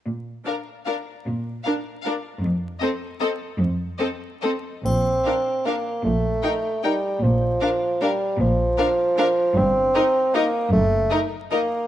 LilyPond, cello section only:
\new Staff \with { instrumentName = "Cello section" } { \clef bass \time 3/4 \key bes \major \tempo 4 = 151 bes,4 r2 | bes,4 r2 | f,4 r2 | f,4 r2 |
bes,4 r2 | bes,4 r2 | bes,4 r2 | bes,4 r2 |
g,4 r2 | ges,4 r2 | }